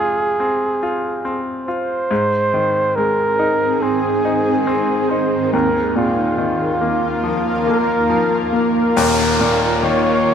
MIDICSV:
0, 0, Header, 1, 5, 480
1, 0, Start_track
1, 0, Tempo, 857143
1, 1180, Time_signature, 4, 2, 24, 8
1, 5791, End_track
2, 0, Start_track
2, 0, Title_t, "Flugelhorn"
2, 0, Program_c, 0, 56
2, 0, Note_on_c, 0, 68, 83
2, 788, Note_off_c, 0, 68, 0
2, 936, Note_on_c, 0, 72, 78
2, 1654, Note_on_c, 0, 70, 81
2, 1663, Note_off_c, 0, 72, 0
2, 2138, Note_on_c, 0, 68, 67
2, 2147, Note_off_c, 0, 70, 0
2, 2854, Note_on_c, 0, 72, 68
2, 2862, Note_off_c, 0, 68, 0
2, 3097, Note_off_c, 0, 72, 0
2, 3100, Note_on_c, 0, 70, 81
2, 3324, Note_off_c, 0, 70, 0
2, 3342, Note_on_c, 0, 65, 68
2, 4279, Note_off_c, 0, 65, 0
2, 4301, Note_on_c, 0, 70, 69
2, 4689, Note_off_c, 0, 70, 0
2, 4784, Note_on_c, 0, 70, 68
2, 5508, Note_on_c, 0, 73, 77
2, 5517, Note_off_c, 0, 70, 0
2, 5791, Note_off_c, 0, 73, 0
2, 5791, End_track
3, 0, Start_track
3, 0, Title_t, "Ambient pad"
3, 0, Program_c, 1, 92
3, 1181, Note_on_c, 1, 51, 61
3, 1184, Note_on_c, 1, 44, 64
3, 1184, Note_on_c, 1, 60, 62
3, 1184, Note_on_c, 1, 68, 69
3, 3083, Note_off_c, 1, 44, 0
3, 3083, Note_off_c, 1, 60, 0
3, 3083, Note_off_c, 1, 68, 0
3, 3102, Note_on_c, 1, 65, 75
3, 3103, Note_on_c, 1, 58, 64
3, 3105, Note_on_c, 1, 39, 65
3, 4998, Note_off_c, 1, 51, 0
3, 5002, Note_off_c, 1, 65, 0
3, 5003, Note_off_c, 1, 39, 0
3, 5003, Note_off_c, 1, 58, 0
3, 5029, Note_on_c, 1, 39, 78
3, 5032, Note_on_c, 1, 65, 84
3, 5033, Note_on_c, 1, 51, 64
3, 5033, Note_on_c, 1, 58, 68
3, 5791, Note_off_c, 1, 39, 0
3, 5791, Note_off_c, 1, 51, 0
3, 5791, Note_off_c, 1, 58, 0
3, 5791, Note_off_c, 1, 65, 0
3, 5791, End_track
4, 0, Start_track
4, 0, Title_t, "Grand piano"
4, 0, Program_c, 2, 0
4, 0, Control_c, 2, 64, 127
4, 0, Note_on_c, 2, 41, 52
4, 0, Note_on_c, 2, 48, 42
4, 0, Note_on_c, 2, 56, 44
4, 0, Note_on_c, 2, 65, 43
4, 223, Note_on_c, 2, 60, 43
4, 439, Note_off_c, 2, 48, 0
4, 455, Note_off_c, 2, 65, 0
4, 463, Note_on_c, 2, 65, 47
4, 680, Note_off_c, 2, 56, 0
4, 691, Note_off_c, 2, 60, 0
4, 700, Note_on_c, 2, 60, 41
4, 933, Note_off_c, 2, 65, 0
4, 941, Note_on_c, 2, 65, 40
4, 1162, Note_off_c, 2, 41, 0
4, 1166, Note_off_c, 2, 60, 0
4, 1174, Note_off_c, 2, 65, 0
4, 1180, Note_on_c, 2, 44, 56
4, 1188, Control_c, 2, 64, 0
4, 1285, Control_c, 2, 64, 127
4, 1421, Note_on_c, 2, 51, 44
4, 1666, Note_on_c, 2, 56, 46
4, 1900, Note_on_c, 2, 63, 47
4, 2142, Note_on_c, 2, 60, 42
4, 2358, Note_off_c, 2, 51, 0
4, 2372, Note_off_c, 2, 63, 0
4, 2380, Note_on_c, 2, 63, 45
4, 2601, Note_off_c, 2, 56, 0
4, 2607, Note_off_c, 2, 60, 0
4, 2616, Note_on_c, 2, 60, 50
4, 2853, Note_off_c, 2, 63, 0
4, 2861, Note_on_c, 2, 63, 40
4, 3078, Note_off_c, 2, 44, 0
4, 3084, Note_off_c, 2, 60, 0
4, 3094, Note_off_c, 2, 63, 0
4, 3098, Note_on_c, 2, 39, 50
4, 3108, Control_c, 2, 64, 0
4, 3218, Control_c, 2, 64, 127
4, 3336, Note_on_c, 2, 46, 40
4, 3573, Note_on_c, 2, 51, 42
4, 3814, Note_on_c, 2, 58, 43
4, 4052, Note_on_c, 2, 53, 41
4, 4276, Note_off_c, 2, 46, 0
4, 4288, Note_off_c, 2, 58, 0
4, 4296, Note_on_c, 2, 58, 46
4, 4514, Note_off_c, 2, 51, 0
4, 4524, Note_off_c, 2, 53, 0
4, 4533, Note_on_c, 2, 53, 44
4, 4767, Note_off_c, 2, 58, 0
4, 4775, Note_on_c, 2, 58, 38
4, 4997, Note_off_c, 2, 39, 0
4, 5002, Note_off_c, 2, 53, 0
4, 5011, Note_off_c, 2, 58, 0
4, 5021, Note_on_c, 2, 39, 66
4, 5023, Note_on_c, 2, 27, 53
4, 5027, Control_c, 2, 64, 0
4, 5120, Control_c, 2, 64, 127
4, 5265, Note_on_c, 2, 46, 52
4, 5506, Note_on_c, 2, 51, 49
4, 5791, Note_off_c, 2, 27, 0
4, 5791, Note_off_c, 2, 39, 0
4, 5791, Note_off_c, 2, 46, 0
4, 5791, Note_off_c, 2, 51, 0
4, 5791, End_track
5, 0, Start_track
5, 0, Title_t, "Downlifter"
5, 0, Program_c, 3, 103
5, 0, Note_on_c, 3, 60, 52
5, 1180, Note_off_c, 3, 60, 0
5, 5020, Note_on_c, 3, 60, 74
5, 5791, Note_off_c, 3, 60, 0
5, 5791, End_track
0, 0, End_of_file